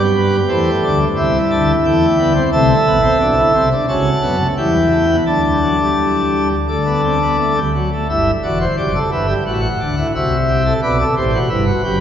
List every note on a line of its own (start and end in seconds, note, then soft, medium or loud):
0.00 0.40 G2 medium
0.00 0.40 G3 medium
0.00 0.40 B3 medium
0.00 0.98 G4 medium
0.15 0.36 B4 medium
0.49 0.70 E2 medium
0.49 0.70 E3 medium
0.49 1.07 A3 medium
0.49 0.70 C5 medium
0.83 1.04 D2 medium
0.83 1.04 D3 medium
0.83 1.04 D5 medium
1.16 1.38 C2 medium
1.16 1.38 C3 medium
1.16 1.75 G3 medium
1.16 2.33 E4 medium
1.16 1.38 E5 medium
1.50 1.71 D2 medium
1.50 1.72 D3 medium
1.50 1.72 A5 medium
1.84 2.05 E2 medium
1.84 2.05 E3 medium
1.84 2.06 A3 medium
1.84 2.43 G5 medium
2.18 2.39 D2 medium
2.18 2.39 D3 medium
2.18 2.33 B3 medium
2.35 2.50 C4 medium
2.52 2.73 C2 loud
2.52 2.74 C3 loud
2.52 2.74 A3 medium
2.52 3.69 A4 loud
2.52 3.69 E5 medium
2.86 3.07 A1 medium
2.86 3.07 A2 loud
2.86 3.01 B3 medium
3.03 3.18 C4 medium
3.20 3.41 B1 medium
3.20 3.41 B2 medium
3.20 3.35 D4 medium
3.37 3.52 E4 medium
3.54 3.75 C2 medium
3.54 3.75 C3 medium
3.54 3.69 C4 medium
3.72 3.86 D4 medium
3.88 4.10 C#2 medium
3.88 4.10 C#3 medium
3.88 4.09 C#4 medium
3.88 4.47 F#4 medium
3.88 4.47 A5 medium
4.22 4.43 F#2 medium
4.22 4.43 F#3 medium
4.22 4.37 B3 medium
4.40 4.54 A3 medium
4.57 5.16 E2 medium
4.57 5.16 E3 medium
4.57 4.78 G3 medium
4.57 5.16 E4 medium
4.57 5.16 G5 medium
4.91 5.06 A3 medium
5.10 5.24 B3 medium
5.26 6.48 D2 medium
5.26 6.48 D3 medium
5.26 5.41 A3 medium
5.26 6.48 D4 medium
5.26 6.48 A5 medium
5.45 5.59 G3 medium
5.62 5.76 F#3 medium
5.79 6.55 G3 medium
6.68 7.59 D2 medium
6.68 7.59 D3 medium
6.68 6.83 A3 medium
6.68 7.59 A4 medium
6.68 7.59 D5 medium
6.86 7.01 B3 medium
7.03 7.18 C4 medium
7.22 7.36 B3 medium
7.38 7.54 A3 medium
7.56 7.72 G3 medium
7.75 7.90 F#3 medium
7.93 8.07 A3 medium
8.09 8.31 G1 loud
8.09 8.31 G2 loud
8.09 8.31 E4 medium
8.09 8.31 E5 medium
8.43 8.65 E1 medium
8.43 8.65 E2 medium
8.43 8.65 F#4 medium
8.43 8.58 D5 medium
8.61 8.76 C5 medium
8.77 8.99 F#1 loud
8.77 8.99 F#2 medium
8.77 8.92 G4 medium
8.77 8.99 D5 medium
8.95 9.10 A4 medium
9.12 9.33 G1 loud
9.12 9.33 G2 medium
9.12 9.27 B4 medium
9.12 9.33 E5 medium
9.28 9.44 G4 medium
9.46 9.67 A1 medium
9.46 9.67 A2 medium
9.46 9.67 F#4 medium
9.46 9.52 F#5 medium
9.53 9.60 E5 medium
9.60 10.07 F#5 medium
9.80 10.02 D2 medium
9.80 10.02 D3 medium
9.80 9.95 D4 medium
9.97 10.12 E4 medium
10.15 10.73 C2 medium
10.15 10.73 C3 medium
10.15 10.36 F#4 medium
10.15 10.73 E5 medium
10.48 10.63 G4 medium
10.65 10.80 A4 medium
10.83 11.04 B1 loud
10.83 11.04 B2 loud
10.83 10.98 B4 medium
10.83 11.04 D5 medium
11.00 11.15 A4 medium
11.17 11.38 A1 loud
11.17 11.38 A2 medium
11.17 11.32 G4 medium
11.17 11.38 C5 medium
11.34 11.49 F#4 medium
11.49 11.71 G1 loud
11.49 11.71 G2 loud
11.49 11.64 E4 medium
11.49 12.00 B4 medium
11.67 11.82 F#4 medium
11.84 12.00 F#1 medium
11.84 12.00 F#2 medium
11.84 11.99 G4 medium